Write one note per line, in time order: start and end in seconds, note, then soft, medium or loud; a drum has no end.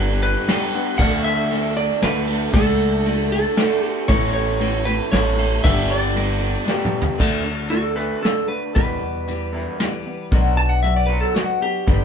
0.00 0.34 G1 medium
0.00 0.46 G2 medium
0.00 0.46 D3 loud
0.00 0.46 G3 medium
0.00 0.47 G3 loud
0.00 0.47 B3 medium
0.00 0.47 B3 loud
0.00 0.48 D4 medium
0.00 0.50 D4 loud
0.00 0.48 G4 loud
0.00 0.48 G4 medium
0.00 0.22 B4 medium
0.11 shaker soft
0.23 0.96 B4 medium
0.23 shaker medium
0.47 0.98 G2 medium
0.47 0.98 D3 medium
0.47 0.73 G3 medium
0.47 0.74 B3 medium
0.47 0.73 D4 medium
0.47 0.72 G4 medium
0.47 snare medium
0.47 ride medium
0.47 shaker soft
0.62 shaker medium
0.74 0.98 G3 soft
0.74 0.99 B3 soft
0.74 0.99 D4 soft
0.74 1.00 G4 soft
0.98 1.89 D2 medium
0.98 1.50 D3 medium
0.98 1.51 A3 medium
0.98 1.51 D4 medium
0.98 1.52 F#4 medium
0.98 1.24 F#5 loud
0.98 kick loud
0.98 crash loud
0.98 shaker medium
1.24 1.76 E5 loud
1.24 shaker soft
1.50 2.02 D3 medium
1.50 2.03 A3 medium
1.50 2.03 D4 medium
1.50 2.03 F#4 medium
1.50 ride medium
1.77 2.04 D5 loud
1.77 shaker loud
1.90 shaker soft
2.02 2.47 D2 medium
2.02 2.29 D3 medium
2.02 2.28 A3 medium
2.02 2.28 D4 medium
2.02 2.26 F#4 medium
2.02 2.53 B4 medium
2.02 snare medium
2.02 ride medium
2.15 shaker medium
2.27 2.53 A3 soft
2.27 2.54 D4 soft
2.27 2.54 F#4 soft
2.27 ride medium
2.52 3.43 C#2 loud
2.52 3.55 D3 medium
2.52 3.06 A3 medium
2.52 3.06 D4 medium
2.52 3.07 F#4 medium
2.52 3.28 A4 medium
2.52 kick loud
2.52 ride medium
2.52 shaker loud
2.81 shaker soft
2.94 shaker medium
3.06 3.56 A3 medium
3.06 3.56 D4 medium
3.06 3.57 F#4 medium
3.06 ride medium
3.32 3.86 A4 medium
3.32 shaker loud
3.45 shaker soft
3.56 4.08 D3 medium
3.56 4.08 A3 medium
3.56 4.09 D4 medium
3.56 4.09 F#4 medium
3.56 snare medium
3.56 ride medium
3.71 shaker medium
3.86 4.06 G4 medium
4.08 4.98 A1 loud
4.08 4.61 A2 medium
4.08 4.58 E3 medium
4.08 4.59 A3 medium
4.08 4.59 C#4 medium
4.08 4.60 A4 medium
4.08 4.32 C#5 medium
4.08 kick loud
4.08 ride medium
4.08 shaker medium
4.34 4.88 C#5 medium
4.47 shaker medium
4.59 4.86 E3 medium
4.59 4.86 A3 medium
4.59 4.85 C#4 medium
4.59 4.83 A4 medium
4.59 ride medium
4.84 5.11 A3 soft
4.84 5.11 C#4 soft
4.84 5.12 A4 medium
4.84 5.11 B4 medium
4.84 shaker loud
5.00 shaker soft
5.11 5.57 A1 medium
5.11 5.62 A2 medium
5.11 5.38 E3 medium
5.11 5.37 A3 medium
5.11 5.37 C#4 medium
5.11 5.35 A4 medium
5.11 5.60 C#5 medium
5.11 snare medium
5.11 ride medium
5.26 shaker medium
5.36 5.64 A3 soft
5.36 5.64 C#4 soft
5.36 5.63 A4 soft
5.36 ride medium
5.63 6.54 G1 loud
5.63 6.16 G2 medium
5.63 6.16 D3 medium
5.63 6.14 G3 medium
5.63 6.15 B3 medium
5.63 6.15 D4 medium
5.63 6.16 G4 medium
5.63 5.91 E5 loud
5.63 kick loud
5.63 ride medium
5.63 shaker loud
5.90 6.90 D5 medium
6.02 shaker medium
6.15 6.41 G3 medium
6.15 6.40 B3 medium
6.15 6.40 D4 medium
6.15 6.39 G4 medium
6.15 ride medium
6.15 shaker soft
6.29 shaker soft
6.40 6.64 G3 soft
6.40 6.65 B3 soft
6.40 6.66 D4 soft
6.40 6.66 G4 medium
6.40 shaker loud
6.55 shaker soft
6.65 7.17 G2 medium
6.65 7.17 D3 medium
6.65 7.18 G3 medium
6.65 7.19 B3 medium
6.65 7.18 D4 medium
6.65 7.19 G4 medium
6.65 snare medium
6.65 shaker soft
6.80 shaker medium
6.85 mid tom medium
7.02 floor tom loud
7.18 8.09 D2 medium
7.18 7.70 D3 medium
7.18 7.71 A3 medium
7.18 7.71 D4 medium
7.18 7.72 F#4 medium
7.18 kick loud
7.18 crash loud
7.44 7.69 D3 medium
7.44 7.69 A3 medium
7.70 8.23 D3 medium
7.70 8.24 A3 medium
7.70 8.24 D4 medium
7.70 7.84 F#4 medium
7.70 8.25 F#4 medium
7.70 closed hi-hat medium
7.83 7.95 A4 medium
7.96 8.21 D3 medium
7.96 8.22 A3 loud
7.96 8.22 D4 medium
7.96 8.22 B4 medium
8.23 8.76 D3 medium
8.23 8.76 A3 medium
8.23 8.77 D4 medium
8.23 8.76 F#4 medium
8.23 8.48 A4 medium
8.23 snare medium
8.23 closed hi-hat medium
8.48 8.72 D3 medium
8.48 8.72 A3 medium
8.48 8.74 B4 medium
8.75 9.28 E2 medium
8.75 9.65 E2 medium
8.75 9.28 B2 medium
8.75 9.26 E3 medium
8.75 9.28 G3 medium
8.75 9.29 B3 medium
8.75 9.28 G4 medium
8.75 10.27 B4 medium
8.75 kick loud
8.75 closed hi-hat medium
9.00 9.24 E2 medium
9.00 9.24 B2 medium
9.28 9.51 E2 medium
9.28 9.51 B2 medium
9.28 9.79 E3 medium
9.28 9.80 G3 medium
9.28 9.80 B3 medium
9.28 9.81 G4 medium
9.28 closed hi-hat medium
9.53 9.78 E2 medium
9.53 9.78 B2 medium
9.53 9.78 E3 medium
9.80 10.03 E2 medium
9.80 10.03 B2 medium
9.80 10.32 E3 medium
9.80 10.32 G3 medium
9.80 10.33 B3 medium
9.80 10.33 G4 medium
9.80 snare medium
9.80 closed hi-hat medium
10.06 10.29 E2 medium
10.06 10.29 B2 medium
10.32 11.21 B1 medium
10.32 10.84 B2 medium
10.32 10.82 F#3 medium
10.32 10.83 B3 medium
10.32 10.84 D4 medium
10.32 10.84 F#4 medium
10.32 kick loud
10.32 closed hi-hat medium
10.57 10.80 B2 medium
10.57 10.81 F#3 medium
10.57 10.70 A5 medium
10.69 10.82 F#5 medium
10.83 11.07 B2 medium
10.83 11.34 F#3 medium
10.83 11.35 B3 medium
10.83 11.36 D4 medium
10.83 11.36 F#4 medium
10.83 10.96 E5 medium
10.83 closed hi-hat medium
10.96 11.09 D5 medium
11.07 11.33 B2 medium
11.07 11.34 F#3 loud
11.07 11.34 B3 loud
11.07 11.20 B4 medium
11.21 11.34 A4 medium
11.35 11.59 B2 medium
11.35 11.87 F#3 medium
11.35 11.88 B3 medium
11.35 11.88 D4 medium
11.35 11.60 F#4 medium
11.35 11.88 F#4 medium
11.35 snare medium
11.35 closed hi-hat medium
11.61 11.85 B2 medium
11.61 11.85 F#3 medium
11.61 12.04 G4 medium
11.87 12.04 G1 medium
11.87 12.04 G2 medium
11.87 12.04 D3 medium
11.87 12.04 G3 medium
11.87 12.04 B3 medium
11.87 12.04 D4 medium
11.87 12.04 G4 medium
11.87 kick loud
11.87 closed hi-hat medium